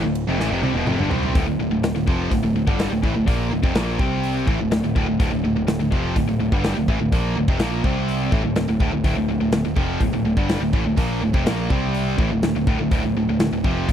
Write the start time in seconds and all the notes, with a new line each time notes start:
0.03 D1 D2 A2
0.15 ride
0.27 F1 F2 C3
0.38 A1 A2 E3, snare
0.51 F1 F2 C3
0.62 C2 C3 G3, high tom
0.74 E1 E2 B2
0.87 F1 F2 C3, mid tom
0.99 G1 G2 D3, mid tom
1.10 C2 C3 G3 C4, floor tom
1.23 floor tom
1.35 D1 D2 A2, kick, open hi-hat
1.47 D1 D2 A2
1.59 D1 D2 A2
1.70 D1 D2 A2
1.82 D1 D2 A2, snare, open hi-hat
1.95 D1 D2 A2
2.07 F1 F2 C3 F3, kick
2.31 D1 D2 A2, kick, open hi-hat
2.42 D1 D2 A2
2.54 D1 D2 A2
2.67 G1 G2 D3 G3, kick
2.79 snare, open hi-hat
2.90 D1 D2 A2
3.02 A1 A2 E3, kick
3.14 D1 D2 A2
3.26 A#1 A#2 F3 A#3, kick, open hi-hat
3.50 D1 D2 A2
3.62 F1 F2 C3, kick
3.75 A#1 A#2 F3 A#3, snare, open hi-hat
3.99 C2 C3 G3 C4, kick
4.24 open hi-hat
4.47 A1 A2 E3, kick
4.59 D1 D2 A2
4.71 D1 D2 A2, snare, open hi-hat
4.83 D1 D2 A2
4.95 D1 D2 A2, kick
5.07 D1 D2 A2
5.19 D1 D2 A2, kick, open hi-hat
5.32 D1 D2 A2
5.44 D1 D2 A2
5.56 D1 D2 A2
5.67 D1 D2 A2, snare, open hi-hat
5.79 D1 D2 A2
5.91 F1 F2 C3 F3, kick
6.16 D1 D2 A2, kick, open hi-hat
6.27 D1 D2 A2
6.40 D1 D2 A2
6.52 G1 G2 D3 G3, kick
6.64 snare, open hi-hat
6.76 D1 D2 A2
6.88 A1 A2 E3, kick
7.00 D1 D2 A2
7.12 A#1 A#2 F3 A#3, kick, open hi-hat
7.36 D1 D2 A2
7.48 F1 F2 C3, kick
7.59 A#1 A#2 F3 A#3, snare, open hi-hat
7.84 C2 C3 G3 C4, kick
8.09 open hi-hat
8.32 A1 A2 E3, kick
8.44 D1 D2 A2
8.56 D1 D2 A2, snare, open hi-hat
8.68 D1 D2 A2
8.80 D1 D2 A2, kick
8.92 D1 D2 A2
9.04 D1 D2 A2, kick, open hi-hat
9.16 D1 D2 A2
9.29 D1 D2 A2
9.40 D1 D2 A2
9.52 D1 D2 A2, snare, open hi-hat
9.65 D1 D2 A2
9.76 F1 F2 C3 F3, kick
10.00 D1 D2 A2, kick, open hi-hat
10.12 D1 D2 A2
10.24 D1 D2 A2
10.37 G1 G2 D3 G3, kick
10.49 snare, open hi-hat
10.60 D1 D2 A2
10.73 A1 A2 E3, kick
10.85 D1 D2 A2
10.97 A#1 A#2 F3 A#3, kick, open hi-hat
11.21 D1 D2 A2
11.34 F1 F2 C3, kick
11.46 A#1 A#2 F3 A#3, snare, open hi-hat
11.70 C2 C3 G3 C4, kick
11.94 open hi-hat
12.18 A1 A2 E3, kick
12.30 D1 D2 A2
12.42 D1 D2 A2, snare, open hi-hat
12.54 D1 D2 A2
12.67 D1 D2 A2, kick
12.79 D1 D2 A2
12.91 D1 D2 A2, kick, open hi-hat
13.03 D1 D2 A2
13.15 D1 D2 A2
13.27 D1 D2 A2
13.39 D1 D2 A2, snare, open hi-hat
13.51 D1 D2 A2
13.64 F1 F2 C3 F3, kick
13.88 D1 D2 A2, kick, open hi-hat